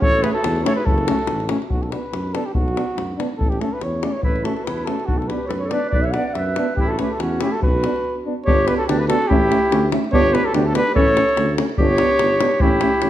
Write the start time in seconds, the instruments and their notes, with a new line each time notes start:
0.01 tuba A1, clarinet A4, trumpet C#5, davul low
0.22 euphonium A3, trombone C#4, clarinet G#4, trumpet B4, davul high
0.34 clarinet F#4, trumpet A4
0.44 tuba E2, davul high
0.56 davul high
0.64 euphonium A3, trombone C#4, clarinet A4, trumpet C#5, davul high
0.76 clarinet G#4, trumpet B4
0.86 tuba F#1, clarinet F#4, trumpet A4, davul low
0.98 davul high
1.08 euphonium A3, trombone C#4, davul high
1.19 davul high
1.27 tuba A1, davul high
1.40 davul high
1.49 euphonium A3, trombone C#4, davul high
1.62 davul high
1.70 tuba B1, trumpet F#4, davul low
1.83 trumpet A4, davul high
1.91 euphonium B3, trombone D4, trumpet B4, davul high
2.13 tuba F#2, davul high
2.34 euphonium B3, trombone D4, trumpet A4, davul high
2.46 trumpet G4
2.54 tuba B1, trumpet F#4, davul low
2.68 davul high
2.76 euphonium B3, trombone D4, davul high
2.97 tuba F#2, davul high
3.18 euphonium B3, trombone D4, davul high
3.37 tuba A1, trumpet A4, davul low
3.50 trumpet G4, davul high
3.60 euphonium A3, trombone C#4, trumpet A4, davul high
3.73 trumpet B4
3.81 tuba E2, trumpet C#5, davul high
4.02 euphonium A3, trombone C#4, trumpet D5, davul high
4.13 trumpet C#5
4.23 tuba A1, clarinet E4, trumpet B4, davul low
4.36 davul high
4.43 euphonium A3, trombone C#4, clarinet F#4, trumpet A4, davul high
4.55 clarinet F#4, trumpet A4, davul high
4.64 tuba E2, clarinet E4, trumpet B4, davul high
4.78 davul high
4.85 euphonium A3, trombone C#4, clarinet F#4, trumpet A4, davul high
5.00 davul high
5.06 tuba B1, clarinet D4, trumpet F#4, davul low
5.18 clarinet F#4, trumpet A4, davul high
5.28 euphonium B3, trombone D4, clarinet G4, trumpet B4, davul high
5.45 clarinet A4, trumpet B4 C#5
5.50 tuba F#2, clarinet F#4, davul high
5.60 trumpet C#5
5.64 clarinet A4
5.69 euphonium B3, trombone D4, trumpet D5, davul high
5.73 clarinet B4
5.90 tuba B1, clarinet B4, trumpet D5, davul low
6.02 clarinet C#5, trumpet E5, davul high
6.12 trombone D4, clarinet D5, trumpet F#5, davul high
6.16 euphonium B3
6.28 clarinet D5, trumpet F#5
6.34 tuba F#2, trumpet E5, davul high
6.39 clarinet B4
6.56 euphonium B3, trombone D4, davul high
6.76 tuba A1, trumpet G4, davul low
6.80 clarinet E4
6.86 clarinet G4, trumpet A4 B4
6.91 clarinet F#4
6.98 euphonium A3, trombone C#4, clarinet G4, trumpet B4, davul high
7.10 clarinet F#4, trumpet A4
7.19 tuba E2, clarinet C#4, trumpet F#4, davul high
7.41 euphonium A3, trombone C#4, clarinet E4, trumpet G4, davul high
7.52 clarinet F#4, trumpet A4
7.62 tuba B1, clarinet F#4, trumpet B4, davul low
7.83 euphonium B3, trombone D4, davul high
7.96 davul high
8.26 euphonium B3, trombone D4
8.45 tuba G1, euphonium B3, trombone D4, clarinet G4, trumpet C#5, davul low
8.67 euphonium B3, trombone D4, clarinet G4, trumpet B4, davul high
8.78 clarinet F#4, trumpet A4
8.87 tuba D2, euphonium B3, trombone D4, clarinet D4, trumpet G4, davul high
8.99 clarinet G4, trumpet B4
9.08 euphonium B3, trombone D4, clarinet F#4, trumpet A4, davul high
9.22 davul high
9.28 tuba A1, euphonium A3, trombone C#4, clarinet E4, trumpet G4, davul low
9.50 euphonium A3, trombone C#4, davul high
9.71 tuba D2, euphonium A3, trombone C#4, davul high
9.91 euphonium A3, trombone C#4, davul high
10.04 davul high
10.12 tuba G1, euphonium B3, trombone D4, clarinet G4, trumpet C#5, davul low
10.33 euphonium B3, trombone D4, clarinet G4, trumpet B4, davul high
10.45 clarinet F#4, trumpet A4
10.53 tuba D2, euphonium B3, trombone D4, clarinet D4, trumpet G4, davul high
10.66 clarinet F#4, trumpet A4
10.73 euphonium B3, trombone D4, clarinet G4, trumpet B4, davul high
10.87 davul high
10.94 tuba A1, euphonium A3, trombone C#4, clarinet A4, trumpet C#5, davul low
11.08 davul high
11.14 euphonium A3, trombone C#4, davul high
11.29 davul high
11.37 tuba D2, euphonium A3, trombone C#4, davul high
11.49 davul high
11.57 euphonium A3, trombone C#4, davul high
11.69 davul high
11.78 tuba G1, euphonium B3, trombone D4, clarinet G4, trumpet C#5, davul low
11.98 euphonium B3, trombone D4, davul high
12.19 tuba G1, euphonium B3, trombone D4, davul high
12.40 euphonium B3, trombone D4, davul high
12.51 davul high
12.60 tuba A1, euphonium A3, trombone C#4, clarinet E4, trumpet G4, davul low
12.81 euphonium A3, trombone C#4, davul high
13.02 tuba A1, euphonium A3, trombone C#4, davul high